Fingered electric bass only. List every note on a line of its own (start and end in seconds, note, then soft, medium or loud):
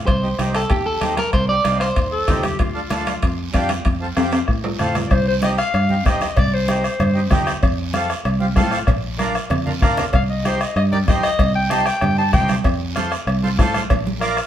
0.08 0.33 C2 medium
0.39 0.64 C2 medium
0.71 0.96 D#2 medium
1.01 1.27 D#2 medium
1.33 1.58 C2 medium
1.65 1.90 C2 medium
1.97 2.22 D#2 medium
2.28 2.53 D#2 loud
2.60 2.85 D2 medium
2.91 3.16 D2 medium
3.23 3.48 F2 medium
3.54 3.79 F2 loud
3.85 4.11 F2 medium
4.17 4.42 F2 medium
4.48 4.73 A2 medium
4.80 5.05 A2 loud
5.11 5.61 C2 loud
5.74 6.06 G2 loud
6.06 6.31 D#2 medium
6.37 6.87 C2 loud
7.00 7.31 G2 loud
7.31 7.56 D#2 medium
7.63 8.13 F2 loud
8.25 8.58 C2 loud
8.56 8.82 A2 medium
8.88 9.38 A#1 loud
9.50 9.82 F2 loud
9.82 10.07 D2 medium
10.14 10.64 C2 medium
10.76 11.08 G2 loud
11.08 11.33 D#2 medium
11.39 11.89 C2 loud
12.02 12.35 G2 loud
12.34 12.59 C2 medium
12.65 13.15 F2 loud
13.27 13.60 C2 loud
13.59 13.84 A2 medium
13.91 14.41 A#1 loud